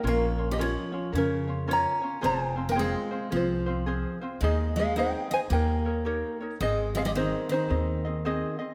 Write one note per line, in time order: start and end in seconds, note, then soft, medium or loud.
0.03 0.75 A#1 medium
0.03 0.47 A#3 medium
0.03 0.38 C#4 medium
0.03 0.38 F4 medium
0.03 0.38 A#4 medium
0.03 0.37 C#5 medium
0.08 0.48 A#4 medium
0.08 0.52 F5 loud
0.38 0.58 C#4 soft
0.38 0.58 F4 soft
0.38 0.58 C#5 soft
0.51 0.59 G3 medium
0.51 0.59 G4 medium
0.51 0.61 D#5 medium
0.58 1.11 F3 medium
0.58 0.93 C#4 medium
0.58 0.92 F4 medium
0.58 1.11 F4 medium
0.58 0.93 A#4 medium
0.58 0.91 C#5 medium
0.63 1.17 C#5 medium
0.92 1.13 C#4 soft
0.92 1.13 F4 soft
0.92 1.13 C#5 medium
1.12 1.84 F2 medium
1.12 1.65 C#3 medium
1.12 1.48 C#4 medium
1.12 1.65 C#4 medium
1.12 1.47 F4 medium
1.12 1.48 A#4 medium
1.12 1.46 C#5 medium
1.18 1.67 A#4 medium
1.47 1.67 C#4 soft
1.47 1.67 F4 soft
1.47 1.68 C#5 medium
1.67 2.03 C#4 medium
1.67 2.21 C#4 medium
1.67 2.02 F4 medium
1.67 2.02 A#4 medium
1.67 2.00 C#5 medium
1.67 2.20 C#5 medium
1.73 2.27 A#5 loud
2.02 2.21 C#4 soft
2.02 2.21 F4 soft
2.02 2.22 C#5 medium
2.21 2.94 F1 medium
2.21 2.57 C4 medium
2.21 2.65 C4 medium
2.21 2.56 F4 medium
2.21 2.57 G#4 medium
2.21 2.55 C5 medium
2.21 2.65 C5 medium
2.26 2.43 A5 loud
2.43 2.70 G#5 loud
2.56 2.75 C4 soft
2.56 2.76 F4 soft
2.56 2.76 C5 medium
2.69 2.77 A#3 medium
2.69 2.78 A#4 medium
2.69 2.80 G5 medium
2.75 3.29 G#3 medium
2.75 3.11 C4 medium
2.75 3.11 F4 medium
2.75 3.11 G#4 medium
2.75 3.10 C5 medium
2.80 3.29 G#4 medium
2.80 3.36 F5 medium
3.11 3.30 C4 soft
3.11 3.30 F4 soft
3.11 3.31 C5 medium
3.30 4.03 C2 medium
3.30 4.18 F3 medium
3.30 3.66 C4 medium
3.30 3.67 F4 medium
3.30 3.66 G#4 medium
3.30 3.65 C5 medium
3.36 4.19 F4 medium
3.36 4.20 C5 medium
3.66 3.86 C4 soft
3.66 3.86 F4 soft
3.66 3.86 C5 medium
3.86 4.22 C4 medium
3.86 4.21 F4 medium
3.86 4.21 G#4 medium
3.86 4.20 C5 medium
4.21 4.42 C4 medium
4.21 4.42 F4 medium
4.21 4.41 C5 medium
4.41 5.13 D#2 medium
4.41 4.73 G#3 medium
4.41 4.77 D#4 medium
4.41 4.77 G#4 medium
4.41 4.75 G#4 medium
4.41 4.77 C5 medium
4.41 4.75 D#5 medium
4.41 4.78 D#5 medium
4.76 4.95 G#3 medium
4.76 4.96 D#4 soft
4.76 4.96 G#4 medium
4.76 4.97 G#4 medium
4.76 4.96 D#5 medium
4.76 4.98 F5 medium
4.96 5.28 C4 medium
4.96 5.31 D#4 medium
4.96 5.30 G#4 medium
4.96 5.31 C5 medium
4.96 5.30 C5 medium
4.96 5.29 D#5 medium
4.96 5.33 G5 loud
5.30 5.36 C4 medium
5.30 5.49 D#4 soft
5.30 5.49 G#4 soft
5.30 5.39 C5 medium
5.30 5.51 D#5 medium
5.30 5.38 G#5 medium
5.50 6.22 D#2 medium
5.50 6.36 A#3 medium
5.50 5.85 D#4 medium
5.50 5.85 G4 medium
5.50 5.85 A#4 medium
5.50 5.84 C#5 medium
5.50 6.37 G5 medium
5.54 6.38 A#4 medium
5.85 6.05 D#4 soft
5.85 6.04 A#4 soft
5.85 6.05 C#5 medium
6.05 6.40 D#4 medium
6.05 6.40 G4 medium
6.05 6.40 A#4 medium
6.05 6.39 C#5 medium
6.40 6.60 D#4 soft
6.40 6.61 A#4 medium
6.40 6.60 C#5 medium
6.60 7.32 G#1 medium
6.60 6.93 G#3 medium
6.60 6.95 C4 medium
6.60 6.95 G#4 medium
6.60 6.94 G#4 medium
6.60 6.95 C5 medium
6.60 6.95 D#5 medium
6.60 6.97 D#5 loud
6.95 6.99 G#3 medium
6.95 7.15 C4 soft
6.95 7.16 G#4 soft
6.95 7.02 G#4 medium
6.95 7.15 D#5 medium
6.95 7.01 F5 medium
7.05 7.10 G3 medium
7.05 7.11 G4 medium
7.05 7.10 D#5 loud
7.15 7.47 D#3 medium
7.15 7.50 C4 medium
7.15 7.50 D#4 medium
7.15 7.49 G#4 medium
7.15 7.50 C5 medium
7.15 7.51 C5 medium
7.15 7.48 D#5 medium
7.49 8.55 D#3 medium
7.49 7.68 C4 soft
7.49 7.68 G#4 soft
7.49 8.56 C5 medium
7.49 7.69 D#5 medium
7.54 8.57 D#4 medium
7.68 8.41 D#2 medium
7.68 8.04 C4 medium
7.68 8.04 G#4 medium
7.68 8.04 C5 medium
7.68 8.04 D#5 medium
8.05 8.24 C4 soft
8.05 8.25 G#4 soft
8.05 8.24 D#5 soft
8.25 8.60 C4 medium
8.25 8.58 G#4 medium
8.25 8.59 C5 medium
8.25 8.58 D#5 medium
8.59 8.74 C4 soft
8.59 8.74 G#4 medium
8.59 8.74 D#5 medium